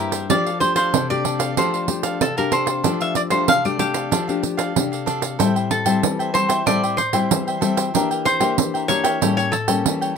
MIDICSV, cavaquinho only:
0, 0, Header, 1, 3, 480
1, 0, Start_track
1, 0, Tempo, 636943
1, 227, Time_signature, 4, 2, 24, 8
1, 7666, End_track
2, 0, Start_track
2, 0, Title_t, "Cavaquinho"
2, 0, Program_c, 0, 24
2, 0, Note_on_c, 0, 64, 64
2, 0, Note_on_c, 0, 70, 66
2, 0, Note_on_c, 0, 72, 70
2, 0, Note_on_c, 0, 76, 73
2, 83, Note_off_c, 0, 76, 0
2, 91, Note_off_c, 0, 72, 0
2, 92, Note_off_c, 0, 64, 0
2, 92, Note_on_c, 0, 76, 54
2, 94, Note_off_c, 0, 70, 0
2, 100, Note_on_c, 0, 72, 48
2, 106, Note_on_c, 0, 70, 43
2, 210, Note_off_c, 0, 76, 0
2, 214, Note_off_c, 0, 72, 0
2, 217, Note_off_c, 0, 70, 0
2, 222, Note_on_c, 0, 62, 62
2, 228, Note_on_c, 0, 69, 70
2, 231, Note_on_c, 0, 74, 80
2, 235, Note_on_c, 0, 77, 77
2, 335, Note_off_c, 0, 62, 0
2, 338, Note_off_c, 0, 69, 0
2, 339, Note_off_c, 0, 74, 0
2, 339, Note_off_c, 0, 77, 0
2, 348, Note_on_c, 0, 77, 51
2, 356, Note_on_c, 0, 74, 47
2, 361, Note_on_c, 0, 69, 39
2, 452, Note_off_c, 0, 69, 0
2, 453, Note_off_c, 0, 74, 0
2, 456, Note_off_c, 0, 77, 0
2, 572, Note_on_c, 0, 77, 70
2, 580, Note_on_c, 0, 74, 65
2, 586, Note_on_c, 0, 69, 59
2, 690, Note_off_c, 0, 77, 0
2, 694, Note_off_c, 0, 74, 0
2, 697, Note_off_c, 0, 69, 0
2, 706, Note_on_c, 0, 62, 49
2, 711, Note_on_c, 0, 69, 52
2, 715, Note_on_c, 0, 74, 54
2, 720, Note_on_c, 0, 77, 57
2, 928, Note_off_c, 0, 62, 0
2, 931, Note_off_c, 0, 69, 0
2, 936, Note_off_c, 0, 74, 0
2, 937, Note_on_c, 0, 62, 45
2, 939, Note_off_c, 0, 77, 0
2, 940, Note_on_c, 0, 69, 50
2, 945, Note_on_c, 0, 74, 57
2, 948, Note_on_c, 0, 77, 48
2, 1040, Note_off_c, 0, 77, 0
2, 1046, Note_off_c, 0, 74, 0
2, 1049, Note_on_c, 0, 77, 70
2, 1051, Note_off_c, 0, 69, 0
2, 1052, Note_off_c, 0, 62, 0
2, 1055, Note_on_c, 0, 74, 71
2, 1061, Note_on_c, 0, 69, 60
2, 1169, Note_off_c, 0, 77, 0
2, 1171, Note_off_c, 0, 74, 0
2, 1174, Note_off_c, 0, 69, 0
2, 1185, Note_on_c, 0, 62, 69
2, 1189, Note_on_c, 0, 69, 71
2, 1193, Note_on_c, 0, 74, 78
2, 1196, Note_on_c, 0, 77, 71
2, 1296, Note_off_c, 0, 62, 0
2, 1298, Note_off_c, 0, 69, 0
2, 1299, Note_off_c, 0, 77, 0
2, 1301, Note_off_c, 0, 74, 0
2, 1308, Note_on_c, 0, 77, 48
2, 1316, Note_on_c, 0, 74, 44
2, 1320, Note_on_c, 0, 69, 38
2, 1411, Note_off_c, 0, 69, 0
2, 1413, Note_off_c, 0, 74, 0
2, 1415, Note_off_c, 0, 77, 0
2, 1532, Note_on_c, 0, 77, 72
2, 1537, Note_on_c, 0, 74, 61
2, 1544, Note_on_c, 0, 69, 59
2, 1770, Note_off_c, 0, 77, 0
2, 1773, Note_off_c, 0, 74, 0
2, 1776, Note_off_c, 0, 69, 0
2, 1786, Note_on_c, 0, 77, 54
2, 1794, Note_on_c, 0, 74, 48
2, 1800, Note_on_c, 0, 69, 41
2, 1890, Note_off_c, 0, 69, 0
2, 1895, Note_off_c, 0, 74, 0
2, 1895, Note_on_c, 0, 62, 64
2, 1897, Note_off_c, 0, 77, 0
2, 1899, Note_on_c, 0, 69, 66
2, 1904, Note_on_c, 0, 74, 69
2, 1907, Note_on_c, 0, 77, 78
2, 1994, Note_off_c, 0, 77, 0
2, 2003, Note_off_c, 0, 74, 0
2, 2004, Note_on_c, 0, 77, 56
2, 2008, Note_off_c, 0, 69, 0
2, 2012, Note_off_c, 0, 62, 0
2, 2012, Note_on_c, 0, 74, 45
2, 2017, Note_on_c, 0, 69, 43
2, 2126, Note_off_c, 0, 77, 0
2, 2130, Note_off_c, 0, 74, 0
2, 2133, Note_off_c, 0, 69, 0
2, 2137, Note_on_c, 0, 62, 65
2, 2141, Note_on_c, 0, 69, 71
2, 2145, Note_on_c, 0, 74, 72
2, 2150, Note_on_c, 0, 77, 75
2, 2252, Note_off_c, 0, 62, 0
2, 2254, Note_off_c, 0, 77, 0
2, 2255, Note_off_c, 0, 69, 0
2, 2257, Note_off_c, 0, 74, 0
2, 2263, Note_on_c, 0, 77, 49
2, 2271, Note_on_c, 0, 74, 41
2, 2276, Note_on_c, 0, 69, 43
2, 2370, Note_off_c, 0, 69, 0
2, 2372, Note_off_c, 0, 74, 0
2, 2374, Note_off_c, 0, 77, 0
2, 2490, Note_on_c, 0, 77, 73
2, 2498, Note_on_c, 0, 74, 61
2, 2504, Note_on_c, 0, 69, 61
2, 2609, Note_off_c, 0, 77, 0
2, 2613, Note_off_c, 0, 74, 0
2, 2616, Note_off_c, 0, 69, 0
2, 2624, Note_on_c, 0, 62, 54
2, 2627, Note_on_c, 0, 69, 55
2, 2632, Note_on_c, 0, 74, 49
2, 2637, Note_on_c, 0, 77, 54
2, 2847, Note_off_c, 0, 62, 0
2, 2853, Note_off_c, 0, 69, 0
2, 2856, Note_on_c, 0, 62, 47
2, 2858, Note_off_c, 0, 74, 0
2, 2862, Note_off_c, 0, 77, 0
2, 2862, Note_on_c, 0, 69, 49
2, 2867, Note_on_c, 0, 74, 49
2, 2871, Note_on_c, 0, 77, 48
2, 2959, Note_off_c, 0, 77, 0
2, 2966, Note_off_c, 0, 74, 0
2, 2968, Note_on_c, 0, 77, 75
2, 2972, Note_off_c, 0, 62, 0
2, 2972, Note_off_c, 0, 69, 0
2, 2975, Note_on_c, 0, 74, 74
2, 2982, Note_on_c, 0, 69, 62
2, 3088, Note_off_c, 0, 77, 0
2, 3091, Note_off_c, 0, 74, 0
2, 3095, Note_off_c, 0, 69, 0
2, 3100, Note_on_c, 0, 62, 73
2, 3104, Note_on_c, 0, 69, 75
2, 3109, Note_on_c, 0, 74, 79
2, 3113, Note_on_c, 0, 77, 81
2, 3213, Note_off_c, 0, 77, 0
2, 3214, Note_off_c, 0, 62, 0
2, 3216, Note_off_c, 0, 69, 0
2, 3218, Note_off_c, 0, 74, 0
2, 3222, Note_on_c, 0, 77, 47
2, 3230, Note_on_c, 0, 74, 43
2, 3236, Note_on_c, 0, 69, 41
2, 3329, Note_off_c, 0, 69, 0
2, 3330, Note_off_c, 0, 74, 0
2, 3335, Note_off_c, 0, 77, 0
2, 3447, Note_on_c, 0, 77, 71
2, 3454, Note_on_c, 0, 74, 60
2, 3461, Note_on_c, 0, 69, 50
2, 3688, Note_off_c, 0, 77, 0
2, 3691, Note_off_c, 0, 74, 0
2, 3694, Note_off_c, 0, 69, 0
2, 3706, Note_on_c, 0, 77, 49
2, 3713, Note_on_c, 0, 74, 44
2, 3720, Note_on_c, 0, 69, 44
2, 3809, Note_off_c, 0, 69, 0
2, 3814, Note_off_c, 0, 74, 0
2, 3814, Note_on_c, 0, 62, 67
2, 3817, Note_off_c, 0, 77, 0
2, 3818, Note_on_c, 0, 69, 71
2, 3823, Note_on_c, 0, 74, 73
2, 3826, Note_on_c, 0, 77, 75
2, 3921, Note_off_c, 0, 77, 0
2, 3927, Note_off_c, 0, 74, 0
2, 3930, Note_on_c, 0, 77, 56
2, 3931, Note_off_c, 0, 62, 0
2, 3933, Note_off_c, 0, 69, 0
2, 3936, Note_on_c, 0, 74, 44
2, 3942, Note_on_c, 0, 69, 44
2, 4049, Note_off_c, 0, 77, 0
2, 4052, Note_off_c, 0, 69, 0
2, 4052, Note_off_c, 0, 74, 0
2, 4061, Note_on_c, 0, 69, 72
2, 4064, Note_on_c, 0, 72, 70
2, 4070, Note_on_c, 0, 76, 75
2, 4073, Note_on_c, 0, 79, 76
2, 4174, Note_off_c, 0, 69, 0
2, 4176, Note_off_c, 0, 72, 0
2, 4177, Note_off_c, 0, 79, 0
2, 4179, Note_off_c, 0, 76, 0
2, 4186, Note_on_c, 0, 79, 51
2, 4193, Note_on_c, 0, 76, 42
2, 4198, Note_on_c, 0, 72, 41
2, 4402, Note_off_c, 0, 79, 0
2, 4410, Note_off_c, 0, 76, 0
2, 4411, Note_on_c, 0, 79, 74
2, 4415, Note_off_c, 0, 72, 0
2, 4419, Note_on_c, 0, 76, 62
2, 4425, Note_on_c, 0, 72, 56
2, 4530, Note_off_c, 0, 79, 0
2, 4533, Note_off_c, 0, 76, 0
2, 4536, Note_off_c, 0, 72, 0
2, 4666, Note_on_c, 0, 79, 45
2, 4672, Note_on_c, 0, 76, 44
2, 4680, Note_on_c, 0, 72, 36
2, 4771, Note_off_c, 0, 72, 0
2, 4774, Note_on_c, 0, 69, 50
2, 4775, Note_off_c, 0, 76, 0
2, 4777, Note_off_c, 0, 79, 0
2, 4780, Note_on_c, 0, 72, 46
2, 4784, Note_on_c, 0, 76, 48
2, 4787, Note_on_c, 0, 79, 55
2, 4879, Note_off_c, 0, 79, 0
2, 4886, Note_off_c, 0, 76, 0
2, 4888, Note_on_c, 0, 79, 74
2, 4891, Note_off_c, 0, 69, 0
2, 4894, Note_off_c, 0, 72, 0
2, 4895, Note_on_c, 0, 76, 72
2, 4902, Note_on_c, 0, 72, 68
2, 5008, Note_off_c, 0, 79, 0
2, 5011, Note_off_c, 0, 76, 0
2, 5015, Note_off_c, 0, 72, 0
2, 5020, Note_on_c, 0, 69, 73
2, 5027, Note_on_c, 0, 72, 80
2, 5030, Note_on_c, 0, 76, 72
2, 5033, Note_on_c, 0, 79, 74
2, 5134, Note_off_c, 0, 69, 0
2, 5137, Note_off_c, 0, 72, 0
2, 5139, Note_off_c, 0, 76, 0
2, 5140, Note_off_c, 0, 79, 0
2, 5150, Note_on_c, 0, 79, 43
2, 5156, Note_on_c, 0, 76, 46
2, 5161, Note_on_c, 0, 72, 41
2, 5254, Note_off_c, 0, 72, 0
2, 5256, Note_off_c, 0, 76, 0
2, 5259, Note_off_c, 0, 79, 0
2, 5375, Note_on_c, 0, 79, 65
2, 5382, Note_on_c, 0, 76, 67
2, 5387, Note_on_c, 0, 72, 58
2, 5611, Note_off_c, 0, 79, 0
2, 5614, Note_off_c, 0, 76, 0
2, 5617, Note_off_c, 0, 72, 0
2, 5632, Note_on_c, 0, 79, 49
2, 5638, Note_on_c, 0, 76, 41
2, 5644, Note_on_c, 0, 72, 44
2, 5731, Note_off_c, 0, 72, 0
2, 5735, Note_on_c, 0, 69, 62
2, 5737, Note_off_c, 0, 76, 0
2, 5739, Note_off_c, 0, 79, 0
2, 5740, Note_on_c, 0, 72, 69
2, 5746, Note_on_c, 0, 76, 76
2, 5748, Note_on_c, 0, 79, 74
2, 5843, Note_off_c, 0, 79, 0
2, 5849, Note_off_c, 0, 76, 0
2, 5851, Note_off_c, 0, 69, 0
2, 5852, Note_on_c, 0, 79, 54
2, 5854, Note_off_c, 0, 72, 0
2, 5858, Note_on_c, 0, 76, 46
2, 5864, Note_on_c, 0, 72, 43
2, 5970, Note_off_c, 0, 79, 0
2, 5973, Note_off_c, 0, 76, 0
2, 5976, Note_off_c, 0, 72, 0
2, 5983, Note_on_c, 0, 62, 63
2, 5987, Note_on_c, 0, 70, 68
2, 5991, Note_on_c, 0, 76, 73
2, 5997, Note_on_c, 0, 79, 80
2, 6095, Note_off_c, 0, 62, 0
2, 6097, Note_off_c, 0, 70, 0
2, 6099, Note_off_c, 0, 76, 0
2, 6100, Note_off_c, 0, 79, 0
2, 6109, Note_on_c, 0, 79, 54
2, 6114, Note_on_c, 0, 76, 48
2, 6120, Note_on_c, 0, 70, 42
2, 6323, Note_off_c, 0, 79, 0
2, 6329, Note_off_c, 0, 76, 0
2, 6332, Note_on_c, 0, 79, 75
2, 6335, Note_off_c, 0, 70, 0
2, 6338, Note_on_c, 0, 76, 66
2, 6344, Note_on_c, 0, 70, 56
2, 6449, Note_off_c, 0, 79, 0
2, 6453, Note_off_c, 0, 76, 0
2, 6455, Note_off_c, 0, 70, 0
2, 6586, Note_on_c, 0, 79, 49
2, 6593, Note_on_c, 0, 76, 44
2, 6599, Note_on_c, 0, 70, 40
2, 6692, Note_off_c, 0, 70, 0
2, 6696, Note_off_c, 0, 76, 0
2, 6696, Note_on_c, 0, 62, 51
2, 6697, Note_off_c, 0, 79, 0
2, 6701, Note_on_c, 0, 70, 52
2, 6705, Note_on_c, 0, 76, 51
2, 6709, Note_on_c, 0, 79, 54
2, 6801, Note_off_c, 0, 79, 0
2, 6809, Note_off_c, 0, 76, 0
2, 6810, Note_on_c, 0, 79, 79
2, 6812, Note_off_c, 0, 62, 0
2, 6814, Note_off_c, 0, 70, 0
2, 6818, Note_on_c, 0, 76, 65
2, 6824, Note_on_c, 0, 70, 68
2, 6929, Note_off_c, 0, 79, 0
2, 6933, Note_off_c, 0, 76, 0
2, 6936, Note_off_c, 0, 70, 0
2, 6943, Note_on_c, 0, 64, 65
2, 6949, Note_on_c, 0, 69, 66
2, 6953, Note_on_c, 0, 73, 75
2, 6955, Note_on_c, 0, 79, 76
2, 7055, Note_off_c, 0, 64, 0
2, 7058, Note_off_c, 0, 69, 0
2, 7060, Note_off_c, 0, 73, 0
2, 7061, Note_off_c, 0, 79, 0
2, 7069, Note_on_c, 0, 79, 47
2, 7076, Note_on_c, 0, 73, 43
2, 7080, Note_on_c, 0, 69, 43
2, 7174, Note_off_c, 0, 69, 0
2, 7176, Note_off_c, 0, 73, 0
2, 7178, Note_off_c, 0, 79, 0
2, 7293, Note_on_c, 0, 79, 75
2, 7300, Note_on_c, 0, 73, 63
2, 7304, Note_on_c, 0, 69, 52
2, 7530, Note_off_c, 0, 79, 0
2, 7534, Note_off_c, 0, 73, 0
2, 7536, Note_off_c, 0, 69, 0
2, 7547, Note_on_c, 0, 79, 58
2, 7553, Note_on_c, 0, 73, 45
2, 7560, Note_on_c, 0, 69, 39
2, 7652, Note_off_c, 0, 69, 0
2, 7656, Note_off_c, 0, 73, 0
2, 7657, Note_off_c, 0, 79, 0
2, 7666, End_track
3, 0, Start_track
3, 0, Title_t, "Muted cavaquinho strokes"
3, 458, Note_on_c, 9, 29, 41
3, 534, Note_off_c, 9, 29, 0
3, 1418, Note_on_c, 9, 29, 36
3, 1494, Note_off_c, 9, 29, 0
3, 2376, Note_on_c, 9, 29, 43
3, 2451, Note_off_c, 9, 29, 0
3, 3335, Note_on_c, 9, 29, 39
3, 3411, Note_off_c, 9, 29, 0
3, 4546, Note_on_c, 9, 29, 39
3, 4621, Note_off_c, 9, 29, 0
3, 5261, Note_on_c, 9, 29, 41
3, 5336, Note_off_c, 9, 29, 0
3, 6467, Note_on_c, 9, 29, 39
3, 6543, Note_off_c, 9, 29, 0
3, 7180, Note_on_c, 9, 29, 36
3, 7255, Note_off_c, 9, 29, 0
3, 7666, End_track
0, 0, End_of_file